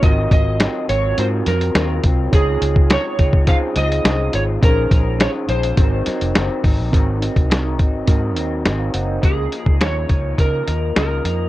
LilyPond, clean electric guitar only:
\new Staff \with { instrumentName = "Clean electric guitar" } { \time 4/4 \key des \major \tempo 4 = 104 <aes, ees ges c' f'>8 <ges c' f'>8 <ees ges c' f'>8 <ges c' f'>8 <aes, ees ges c' f'>8 <ges c' f'>8 <ees ges c' f'>8 <ges c' f'>8 | <des aes c' f'>8 <aes c' f'>8 <des aes c' f'>8 <aes c' f'>8 <des aes c' f'>8 <aes c' f'>8 <des aes c' f'>8 <aes c' f'>8 | <bes, ees aes des' f'>8 <aes des' f'>8 <ees aes des' f'>8 <aes des' f'>8 <aes, ees ges c' ees'>8 <ges c' ees'>8 <ees ges c' ees'>8 <ges c' ees'>8 | <aes, ees ges c' ees'>8 <ges c' ees'>8 <aes, ees ges c' ees'>8 <ges c' ees'>8 <ees ges c' ees'>8 <ges c' ees'>8 <aes, ees ges c' ees'>8 <ges c' ees'>8 |
<des f bes ees'>8 <f bes ees'>8 <des f bes ees'>8 <f bes ees'>8 <des f bes ees'>8 <f bes ees'>8 <des f bes ees'>8 <f bes ees'>8 | }